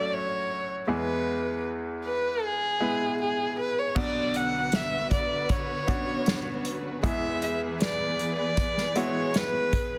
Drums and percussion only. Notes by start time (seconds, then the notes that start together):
3.96 kick, crash
4.34 closed hi-hat
4.72 snare, closed hi-hat
5.11 kick, closed hi-hat
5.49 kick, closed hi-hat
5.88 kick, closed hi-hat
6.26 snare, closed hi-hat
6.65 closed hi-hat
7.04 kick, closed hi-hat
7.42 closed hi-hat
7.80 snare, closed hi-hat
8.19 closed hi-hat
8.57 kick, closed hi-hat
8.78 snare
8.95 closed hi-hat
9.34 snare, closed hi-hat
9.73 kick, closed hi-hat